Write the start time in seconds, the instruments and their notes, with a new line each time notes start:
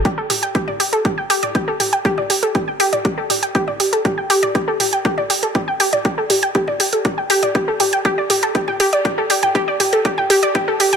0.05 synth arpeggio sound G4, kick, closed hi-hat
0.18 synth arpeggio sound A4
0.30 synth arpeggio sound G4, mid tom, open hi-hat
0.43 synth arpeggio sound G5, closed hi-hat
0.55 synth arpeggio sound G4, kick, closed hi-hat
0.68 synth arpeggio sound D5, mid tom
0.80 synth arpeggio sound G4, open hi-hat
0.93 synth arpeggio sound A4, closed hi-hat
1.05 synth arpeggio sound G4, kick, closed hi-hat, mid tom
1.18 synth arpeggio sound G5
1.30 synth arpeggio sound G4, open hi-hat
1.43 synth arpeggio sound D5, closed hi-hat, mid tom
1.55 synth arpeggio sound G4, kick, closed hi-hat
1.68 synth arpeggio sound A4
1.80 synth arpeggio sound G4, mid tom, open hi-hat
1.93 synth arpeggio sound G5, closed hi-hat
2.05 synth arpeggio sound G4, kick, closed hi-hat
2.18 synth arpeggio sound D5, mid tom
2.30 synth arpeggio sound G4, open hi-hat
2.43 synth arpeggio sound A4, closed hi-hat
2.55 synth arpeggio sound G4, kick, closed hi-hat, mid tom
2.68 synth arpeggio sound G5
2.80 synth arpeggio sound G4, open hi-hat
2.93 synth arpeggio sound D5, closed hi-hat, mid tom
3.05 synth arpeggio sound G4, kick, closed hi-hat
3.18 synth arpeggio sound A4
3.30 synth arpeggio sound G4, mid tom, open hi-hat
3.43 synth arpeggio sound G5, closed hi-hat
3.55 synth arpeggio sound G4, kick, closed hi-hat
3.68 synth arpeggio sound D5, mid tom
3.80 synth arpeggio sound G4, open hi-hat
3.93 synth arpeggio sound A4, closed hi-hat
4.05 synth arpeggio sound G4, kick, closed hi-hat, mid tom
4.18 synth arpeggio sound G5
4.30 synth arpeggio sound G4, open hi-hat
4.43 synth arpeggio sound D5, closed hi-hat, mid tom
4.55 synth arpeggio sound G4, kick, closed hi-hat
4.68 synth arpeggio sound A4
4.80 synth arpeggio sound G4, mid tom, open hi-hat
4.93 synth arpeggio sound G5, closed hi-hat
5.05 synth arpeggio sound G4, kick, closed hi-hat
5.18 synth arpeggio sound D5, mid tom
5.30 synth arpeggio sound G4, open hi-hat
5.43 synth arpeggio sound A4, closed hi-hat
5.55 synth arpeggio sound G4, kick, closed hi-hat, mid tom
5.68 synth arpeggio sound G5
5.80 synth arpeggio sound G4, open hi-hat
5.93 synth arpeggio sound D5, closed hi-hat, mid tom
6.05 synth arpeggio sound G4, kick, closed hi-hat
6.18 synth arpeggio sound A4
6.30 synth arpeggio sound G4, mid tom, open hi-hat
6.43 synth arpeggio sound G5, closed hi-hat
6.55 synth arpeggio sound G4, kick, closed hi-hat
6.68 synth arpeggio sound D5, mid tom
6.80 synth arpeggio sound G4, open hi-hat
6.93 synth arpeggio sound A4, closed hi-hat
7.05 synth arpeggio sound G4, kick, closed hi-hat, mid tom
7.18 synth arpeggio sound G5
7.30 synth arpeggio sound G4, open hi-hat
7.43 synth arpeggio sound D5, closed hi-hat, mid tom
7.55 synth arpeggio sound G4, kick, closed hi-hat
7.68 synth arpeggio sound A4
7.80 synth arpeggio sound G4, mid tom, open hi-hat
7.93 synth arpeggio sound G5, closed hi-hat
8.05 synth arpeggio sound G4, kick, closed hi-hat
8.18 synth arpeggio sound D5
8.30 synth arpeggio sound G4, mid tom, open hi-hat
8.43 synth arpeggio sound A4, closed hi-hat
8.55 synth arpeggio sound G4, kick, closed hi-hat
8.68 synth arpeggio sound G5, mid tom
8.80 synth arpeggio sound G4, open hi-hat
8.93 synth arpeggio sound D5, closed hi-hat
9.05 synth arpeggio sound G4, kick, closed hi-hat, mid tom
9.18 synth arpeggio sound A4
9.30 synth arpeggio sound G4, open hi-hat
9.43 synth arpeggio sound G5, closed hi-hat, mid tom
9.55 synth arpeggio sound G4, kick, closed hi-hat
9.68 synth arpeggio sound D5
9.80 synth arpeggio sound G4, mid tom, open hi-hat
9.93 synth arpeggio sound A4, closed hi-hat
10.05 synth arpeggio sound G4, kick, closed hi-hat
10.18 synth arpeggio sound G5, mid tom
10.30 synth arpeggio sound G4, open hi-hat
10.43 synth arpeggio sound D5, closed hi-hat
10.55 synth arpeggio sound G4, kick, closed hi-hat, mid tom
10.68 synth arpeggio sound A4
10.80 synth arpeggio sound G4, open hi-hat
10.93 synth arpeggio sound G5, closed hi-hat, mid tom